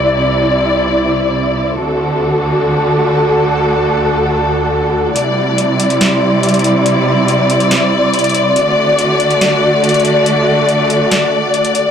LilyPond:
<<
  \new Staff \with { instrumentName = "Synth texture" } { \time 4/4 \key c \lydian \tempo 4 = 141 << { d''1 | d''1~ | d''1 | d''1~ |
d''1~ | d''1~ | d''1 | } \\ { <c' e'>1 | <a fis'>1~ | <a fis'>1 | <c' e'>1~ |
<c' e'>1 | <a fis'>1~ | <a fis'>1 | } >> }
  \new Staff \with { instrumentName = "String section" } { \time 4/4 \key c \lydian << { d''1 | a'1~ | a'1 | d''1~ |
d''1~ | d''1~ | d''1 | } \\ { <c, c e'>1 | <d, d fis'>1~ | <d, d fis'>1 | <c g e'>1~ |
<c g e'>1 | <d a fis'>1~ | <d a fis'>1 | } >> }
  \new DrumStaff \with { instrumentName = "Drums" } \drummode { \time 4/4 r4 r4 r4 r4 | r4 r4 r4 r4 | r4 r4 r4 r4 | hh4 hh8 hh16 hh16 <hh sn>4 hh32 hh32 hh32 hh32 hh8 |
hh4 hh8 hh16 hh16 <hh sn>4 hh32 hh32 hh32 hh32 hh8 | hh4 hh8 hh16 hh16 <hh sn>4 hh32 hh32 hh32 hh32 hh8 | hh4 hh8 hh8 <hh sn>4 hh16 hh16 hh8 | }
>>